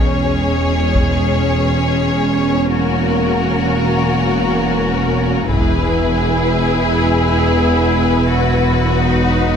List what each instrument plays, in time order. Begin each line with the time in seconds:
Already playing: double bass section E1, cello section E2, french horn section G#3 C#4, viola section C#4, violin section G#4 C#5
0.95 taiko
2.72 french horn section F#3 A#3, violin section F#4 A#4
5.50 double bass section E1, cello section E2, french horn section G#3 B3, viola section E4, violin section G#4 B4, taiko
8.30 french horn section F#3, violin section F#4
9.01 viola section D#4